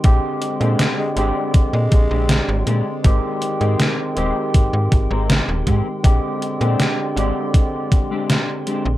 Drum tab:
HH |x-xxx-x-x-x-x-x-|x-xxx-x-x-x-x-x-|x-xxx-x-x-x-x-x-|
SD |----o-------o---|----o-------o---|----o-------o---|
BD |o-------o-o-----|o-------o-o---o-|o-------o-o-----|